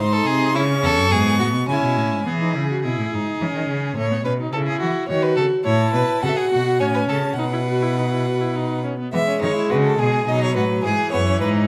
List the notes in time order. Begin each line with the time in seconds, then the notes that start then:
0.00 G#2 D#4 C5 C6
0.13 A4
0.26 C3 G#4
0.55 C#3 C#4 E4 C#6
0.83 E2 A4
0.97 F#2
1.11 G#2 B3 G#4
1.39 A2 F#4
1.53 B2
1.68 C#3 C#4 E4 G#5
1.82 B2
1.97 A2
2.12 G#2
2.26 E3 B3 G#4
2.41 D#4
2.55 C#3 E4
2.70 F#4
2.84 B2 E4 G#4
2.99 A2
3.13 G#2 D#4
3.41 E3 C#4
3.55 D#3
3.70 C#3
3.97 A2 A3 C#5
4.11 B3
4.25 B2 C#4 B4
4.40 D#4
4.53 C#3 E4 A4
4.67 G#4
4.81 E3 F#4
5.08 D#3 F#4 C#5
5.23 B4
5.36 C#3 A4
5.65 A2 E4 C#5 A5
5.94 B2 B4
6.22 C#3 F#4 A4 F#5
6.29 E5
6.36 G#4 F#5
6.51 B2 F#4
6.80 A2 C#4 C#5 G#5
6.94 B4
7.09 C#3 A4 A5
7.38 B2 D#4 B4 F#5
7.52 E4
7.68 F#4
7.82 E4
7.97 D#4
8.11 E4
8.26 F#4
8.40 E4
8.55 D#4
8.84 C#4
8.99 B3
9.13 E3 G#3 B3 E5
9.27 C#4
9.42 D#3 D#4 C#5
9.56 E4
9.70 C#3 F#4 B4
9.84 A4
9.99 B2 G#4
10.27 B2 F#3 D#4 D#5
10.43 C#5
10.56 A2 F#4 B4
10.84 G#2 E3 G#4
11.12 F#2 B3 C#5
11.27 C#4
11.41 G#2 D#4 B4